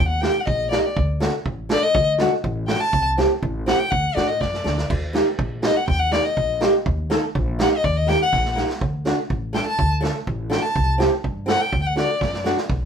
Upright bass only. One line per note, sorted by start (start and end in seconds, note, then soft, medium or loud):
0.00 0.28 D#2 medium
0.47 0.77 A#1 loud
0.97 1.26 D2 medium
1.46 1.75 A1 medium
1.95 2.24 D2 medium
2.44 2.73 A1 loud
2.93 3.23 C2 medium
3.43 3.72 A1 loud
3.92 4.06 D2 medium
4.17 4.39 A2 medium
4.41 4.63 F#2 medium
4.66 4.88 D2 medium
4.90 5.19 D#2 medium
5.39 5.68 A#1 loud
5.88 6.17 D#2 medium
6.37 6.66 A#1 loud
6.86 7.15 D#2 medium
7.35 7.64 A#1 loud
7.84 8.13 D#2 medium
8.33 8.62 A#1 loud
8.81 9.10 D2 medium
9.30 9.59 A1 loud
9.79 10.08 D2 medium
10.27 10.56 A1 loud
10.76 11.05 C2 medium
11.24 11.53 G2 medium
11.73 12.02 D2 medium
12.21 12.50 F#2 loud
12.70 12.85 B1 medium